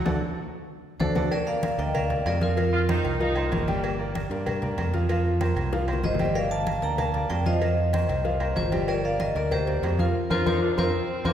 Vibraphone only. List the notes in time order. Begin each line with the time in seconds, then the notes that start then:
1.00 A4 C5
1.32 A#4 D5
1.47 D5 F5
1.79 D#5 G5
1.95 D5 F5
2.27 A#4 D5
2.43 F4 A#4
6.04 C5 D#5
6.35 D5 F5
6.51 F5 A5
6.83 G5 A#5
6.99 F5 A5
7.30 D5 G5
7.46 C5 D#5
8.57 F4 C5
8.89 A#4 D5
9.05 D5 F5
9.20 A#4 D#5
9.36 A#4 D5
9.52 G4 C5
10.00 F4 A#4
10.31 F4 A#4 C5
10.47 F4 A#4 C5
10.78 F4 A#4 C5
11.25 F4 A#4 C5